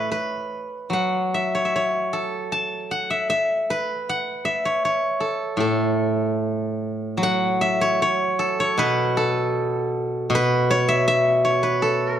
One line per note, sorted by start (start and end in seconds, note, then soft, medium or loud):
0.00 0.11 B4 medium
0.00 1.42 C#5 medium
0.00 1.05 E5 medium
0.12 2.16 B4 medium
0.90 3.29 F#3 soft
0.90 2.54 F#5 medium
1.34 1.65 E5 medium
1.55 1.75 C#5 medium
1.65 3.10 E5 soft
1.76 3.66 C#5 medium
2.13 4.33 A4 medium
2.52 3.97 A5 medium
2.91 4.09 F#5 medium
3.10 3.29 E5 medium
3.30 4.45 E5 medium
3.70 5.75 B4 medium
4.09 5.70 F#5 medium
4.45 6.17 E5 medium
4.65 4.85 C#5 medium
4.85 6.76 C#5 medium
5.20 5.60 A4 soft
5.57 7.98 A2 soft
5.57 7.80 A4 medium
7.17 9.55 F#3 soft
7.23 8.83 F#5 medium
7.61 9.33 E5 medium
7.81 8.02 C#5 medium
8.02 8.60 C#5 medium
8.39 9.17 A4 medium
8.60 10.51 C#5 medium
8.78 10.29 B2 medium
8.78 10.35 B4 medium
9.17 11.37 A4 medium
10.30 12.20 B2 medium
10.35 11.63 B4 loud
10.71 11.44 C#5 loud
10.88 11.07 E5 loud
11.08 12.20 E5 loud
11.45 12.20 C#5 medium
11.63 12.20 B4 medium
11.82 12.20 A4 medium